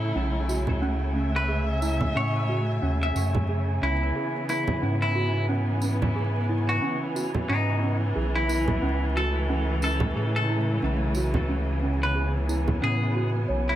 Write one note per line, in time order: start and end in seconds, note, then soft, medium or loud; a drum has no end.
0.00 0.13 A2 medium
0.00 9.11 C#3 medium
0.00 3.78 A3 medium
0.00 0.15 C#4 loud
0.00 0.14 E4 medium
0.00 1.13 E4 medium
0.00 0.49 F#4 medium
0.00 1.48 G#4 medium
0.00 0.12 A4 loud
0.00 13.76 G#5 medium
0.15 0.69 B1 medium
0.15 0.47 C#4 loud
0.49 0.79 F#4 medium
0.49 tambourine medium
0.67 2.12 C#2 medium
0.67 low conga medium
0.82 1.14 C#4 loud
1.15 1.36 C#4 medium
1.15 3.79 E5 medium
1.36 1.65 B4 medium
1.48 1.69 G#4 medium
1.82 2.14 E4 medium
1.82 tambourine medium
2.00 low conga medium
2.15 2.79 A2 medium
2.15 2.47 C#4 loud
2.15 2.62 C#5 medium
2.49 2.79 F#4 medium
2.82 3.12 D#2 loud
2.82 3.14 C#4 loud
3.03 3.71 E5 medium
3.15 3.79 F#2 medium
3.15 3.36 C#4 medium
3.15 tambourine medium
3.35 low conga medium
3.49 3.69 G#4 medium
3.82 4.12 C#2 loud
3.82 13.76 E3 loud
3.82 9.11 B3 medium
3.82 4.03 C#4 medium
3.82 4.43 E4 loud
4.15 4.36 G#4 medium
4.49 4.81 E4 medium
4.49 4.96 E4 medium
4.49 tambourine medium
4.67 low conga medium
4.82 6.79 G#2 medium
4.82 5.14 C#4 loud
5.02 5.45 E4 loud
5.15 5.46 F#4 medium
5.49 5.81 C#4 loud
5.82 6.03 C#4 medium
5.82 tambourine medium
6.02 low conga medium
6.16 6.36 G#4 medium
6.49 6.81 E4 medium
6.69 6.98 F#4 medium
6.82 7.14 C#4 loud
7.16 7.46 F#4 medium
7.16 tambourine medium
7.34 low conga medium
7.49 8.13 G#2 medium
7.49 7.81 C#4 loud
7.49 7.95 D#4 medium
7.82 8.03 C#4 medium
8.16 8.79 B1 medium
8.16 8.36 G#4 medium
8.35 9.04 E4 loud
8.49 8.80 E4 medium
8.49 tambourine medium
8.68 low conga medium
8.82 10.13 C#2 medium
8.82 9.14 C#4 loud
9.16 13.76 C#3 medium
9.16 11.80 A3 medium
9.16 9.46 F#4 medium
9.16 9.77 A4 loud
9.49 9.81 C#4 loud
9.82 10.03 C#4 medium
9.82 10.29 A4 loud
9.82 tambourine medium
10.00 low conga medium
10.16 10.79 A2 medium
10.16 10.36 G#4 medium
10.36 10.79 A4 loud
10.49 10.81 E4 medium
10.82 11.37 B1 medium
10.82 11.14 C#4 loud
11.15 11.46 F#4 medium
11.15 tambourine medium
11.34 12.80 C#2 medium
11.34 low conga medium
11.49 11.81 C#4 loud
11.82 13.76 B3 medium
11.82 12.03 C#4 medium
12.03 12.32 B4 medium
12.15 12.36 G#4 medium
12.48 12.80 E4 medium
12.48 tambourine medium
12.68 low conga medium
12.82 13.46 A2 medium
12.82 13.14 C#4 loud
12.82 13.29 G#4 medium
13.15 13.46 F#4 medium
13.48 13.76 B1 medium
13.48 13.76 C#5 medium
13.69 13.76 E4 loud